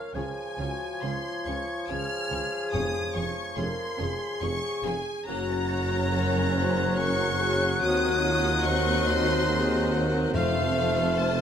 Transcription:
Already playing: bassoon F3, french horn section A#4, clarinet C#5, violin section F5, flute F6
0.14 double bass section C#2, tuba C#2, cello section C#3, bassoon F3, viola section C#4 F4, violin section G#4 C#5 G#5, french horn section G#4, clarinet C#5, flute G#6
0.57 tuba C#2, double bass section C#2, cello section C#3, viola section C#4 F4, french horn section F#4, violin section G#4 C#5
1.02 double bass section C#2, tuba C#2, cello section C#3, viola section C#4 F4, french horn section F4, violin section G#4 C#5 C6
1.45 double bass section C#2, tuba C#2, cello section C#3, viola section C#4 F4, violin section G#4 C#5 C#6
1.88 double bass section C#2, tuba C#2, cello section C#3, viola section C#4 F4, violin section G#4 C#5 F6, french horn section G#4
2.31 double bass section C#2, tuba C#2, cello section C#3, viola section C#4 F4, violin section G#4 C#5
2.72 tuba F1, double bass section F1, cello section F2, timpani F2, viola section C#4 G#4, violin section G#4 C#5 D#6
3.14 tuba F1, double bass section F1, cello section F2, viola section C#4 G#4, violin section G#4 C#5 C#6
3.56 tuba F1, double bass section F1, cello section F2, viola section C#4 G#4, violin section G#4 C#5 C6, french horn section A#4
3.97 double bass section F1, tuba F1, cello section F2, viola section C#4 G#4, violin section G#4 C#5
4.01 french horn section G#4
4.40 tuba F1, double bass section F1, cello section F2, viola section C#4 G#4, violin section G#4 C#5 C#6
4.83 double bass section F1, tuba F1, cello section F2, viola section C#4 G#4, violin section G#4 C#5 G#5
5.26 tuba F#1, double bass section F#1, cello section F#2, bassoon F#3, violin section A#3 C#5 A#5, viola section C#4 F#4, french horn section F#4, clarinet C#5, flute F#6
5.50 violin section C#4
5.68 violin section F#4
5.91 violin section A#4
6.12 violin section F#4, french horn section A#4
6.36 violin section C#4
6.55 violin section A#3, french horn section C5
6.77 violin section C#4
6.97 violin section F#4 C#6, french horn section A#4
7.21 violin section A#4
7.40 violin section F#4, french horn section G#4
7.64 violin section C#4
7.81 cello section D#2, double bass section D#2, tuba D#2, viola section C4, french horn section F#4, violin section D#6
7.85 violin section C4 D#5
8.06 violin section D#4
8.23 french horn section F4, violin section F#4
8.47 violin section D#4
8.64 french horn section F#4, clarinet C5, violin section C#6
8.70 violin section C4
8.89 violin section D#4
9.07 violin section C6
9.12 violin section F#4
9.32 violin section D#4
9.50 violin section C4, french horn section G#4
9.73 violin section D#4
9.93 violin section F#4, french horn section A#4
10.16 violin section D#4
10.33 double bass section F1, tuba F1, cello section F2, timpani F2, bassoon A3, violin section A3 C5 F5, viola section F4, french horn section A4, flute F6
10.57 violin section C4
10.79 violin section F4
11.01 violin section A4
11.19 violin section F4 A5, french horn section C5

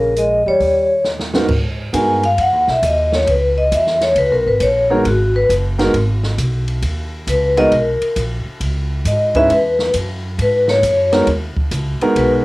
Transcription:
Already playing: upright bass A#1, trombone C#3, vibraphone A#4
0.16 trombone G#3, vibraphone D#5, closed hi-hat
0.46 upright bass E2, trombone G3, vibraphone C#5
0.60 upright bass D#2, kick, open hi-hat
1.04 snare
1.19 snare
1.34 grand piano G#2 B3 D#4 F#4 A#4, snare
1.49 upright bass G#2, kick, crash
1.93 upright bass G2, grand piano G#3 B3 D#4 F#4 A#4, vibraphone G#5, kick, hi-hat pedal, ride
2.23 vibraphone F5, ride
2.38 upright bass F#2, vibraphone F#5, kick, ride
2.52 upright bass D#2
2.67 upright bass B1, vibraphone E5, snare
2.82 upright bass D#2, vibraphone D#5, kick, hi-hat pedal, ride
3.12 vibraphone C#5, snare
3.27 upright bass C#2, vibraphone B4, kick, ride
3.58 vibraphone D#5
3.71 upright bass E2, vibraphone E5, kick, hi-hat pedal, ride
3.87 snare
4.01 vibraphone C#5, snare, ride
4.15 upright bass C#2, vibraphone B4, kick, ride
4.31 upright bass B1, vibraphone A#4
4.46 upright bass G#1, vibraphone B4
4.60 upright bass A#1, vibraphone C#5, kick, hi-hat pedal, ride
4.90 grand piano G#3 B3 D#4 F#4 A#4, vibraphone G#4
5.05 upright bass G#1, vibraphone F#4, kick, ride
5.36 vibraphone B4
5.49 upright bass F#1, kick, hi-hat pedal, ride
5.78 grand piano G#3 B3 D#4 F#4 A#4, snare, ride
5.94 upright bass G#1, kick, ride
6.23 snare
6.38 upright bass B1, kick, hi-hat pedal, ride
6.68 ride
6.82 upright bass D#2, kick, ride
7.27 upright bass C#2, vibraphone B4, kick, hi-hat pedal, ride
7.57 grand piano G#3 B3 D#4 F#4 A#4, vibraphone D#5, ride
7.71 upright bass B1, vibraphone A#4, kick, ride
8.01 muted upright bass stroke, ride
8.16 upright bass A#1, kick, hi-hat pedal, ride
8.45 muted upright bass stroke
8.60 upright bass C#2, kick, ride
9.05 upright bass G#2, vibraphone D#5, kick, hi-hat pedal, ride
9.35 grand piano G#3 C#4 D#4 E4 B4, vibraphone E5, kick, ride
9.49 upright bass E2, vibraphone B4, kick, ride
9.79 snare
9.94 upright bass F#2, kick, hi-hat pedal, ride
10.38 upright bass G#2, vibraphone B4, kick, ride
10.68 vibraphone C#5, snare
10.83 upright bass F#2, kick, hi-hat pedal, ride
11.12 grand piano G#3 B3 D#4 F#4 A#4, snare, ride
11.27 upright bass D#2, kick, ride
11.56 muted upright bass stroke, kick
11.71 upright bass C#2, hi-hat pedal, ride
12.00 grand piano G#3 B3 D#4 F#4 A#4, muted upright bass stroke, ride
12.16 upright bass B1, vibraphone B4, kick, ride

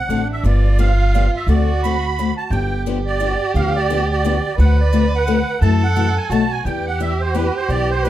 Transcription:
Already playing: accordion F#5
0.09 upright bass A1, steel-string acoustic guitar D3 A3 C4 F#4 A4, violin D4
0.32 accordion E5
0.43 upright bass G1, steel-string acoustic guitar D3 F3 B3 D4 G4, violin F4, accordion D5
0.78 steel-string acoustic guitar D3 F3 B3 D4 G4, accordion F5
1.14 steel-string acoustic guitar D3 F3 B3 D4 G4
1.36 accordion E5
1.47 upright bass D2, steel-string acoustic guitar D3 A3 C4 F#4 A4, violin F#4, accordion D5
1.83 steel-string acoustic guitar D3 A3 C4 F#4 A4, accordion B5
2.19 steel-string acoustic guitar D3 A3 C4 F#4 A4
2.37 accordion A5
2.50 upright bass G1, steel-string acoustic guitar D3 F3 B3 D4 G4, violin G4, accordion G5
2.86 steel-string acoustic guitar D3 F3 B3 D4 G4
3.06 accordion D5
3.20 steel-string acoustic guitar D3 F3 B3 D4 G4
3.54 upright bass D2, steel-string acoustic guitar D3 F3 B3 D4 G4, accordion F5
3.76 accordion D5
3.90 steel-string acoustic guitar D3 F3 B3 D4 G4
4.11 accordion D5
4.24 steel-string acoustic guitar D3 F3 B3 D4 G4
4.58 upright bass D2, steel-string acoustic guitar D3 A3 C4 F#4 A4, violin B4, accordion F#5
4.80 accordion D5
4.93 steel-string acoustic guitar D3 A3 C4 F#4 A4
5.15 accordion F#5
5.27 steel-string acoustic guitar D3 A3 C4 F#4 A4
5.61 upright bass F#2, steel-string acoustic guitar C3 E3 A3 E4 F#4, violin A4, accordion A5
5.82 accordion F#5
5.96 steel-string acoustic guitar C3 E3 A3 E4 F#4
6.17 accordion G#5
6.29 upright bass B1, steel-string acoustic guitar B2 F#3 A3 D#4 F#4, violin F#4, accordion A5
6.51 accordion G#5
6.64 upright bass E2, steel-string acoustic guitar E3 B3 D4 G4, violin G4, accordion G5
6.86 accordion F#5
7.00 steel-string acoustic guitar E3 B3 D4 G4, accordion E5
7.20 accordion C5
7.34 steel-string acoustic guitar E3 B3 D4 G4, accordion B4
7.57 accordion C5
7.69 upright bass B1, steel-string acoustic guitar E3 B3 D4 G4, accordion D5
7.90 accordion C5
8.03 steel-string acoustic guitar E3 B3 D4 G4, accordion B4

